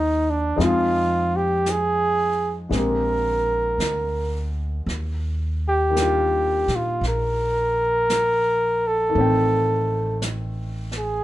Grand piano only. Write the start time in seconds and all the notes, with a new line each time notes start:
Already playing: D#3 A#3 C4 G4 D5
0.56 F3 G#3 C4 D#4
0.61 F4
2.69 D3 G#3 A#3 C4
2.75 G4
5.90 D#3 G3
5.95 A#3 D4
6.01 F4
9.10 D#3
9.15 A3 C4
9.21 G5